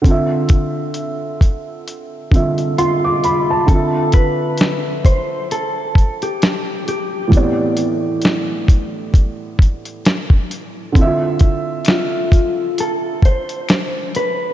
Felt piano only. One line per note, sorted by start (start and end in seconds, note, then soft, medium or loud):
0.01 2.26 D3 medium
0.01 2.28 C4 medium
0.07 2.29 F4 medium
0.07 2.31 E5 medium
2.31 3.65 D3 soft
2.31 3.68 C4 soft
2.31 3.69 F4 soft
2.36 3.70 E5 medium
2.78 3.02 C6 medium
3.05 3.23 D6 medium
3.24 3.48 B5 medium
3.50 3.93 A5 medium
3.66 7.27 D3 medium
3.66 7.28 C4 medium
3.72 7.30 F4 medium
3.72 7.31 E5 medium
7.28 10.89 A2 medium
7.28 10.90 E3 medium
7.28 10.91 B3 medium
7.33 10.92 C4 medium
7.33 10.93 G4 medium
7.33 7.42 C#5 soft
7.43 10.97 D5 medium
10.92 14.53 D3 medium
10.92 14.53 C4 medium
10.98 11.04 E4 medium
10.98 14.53 E5 medium
11.05 14.53 F4 medium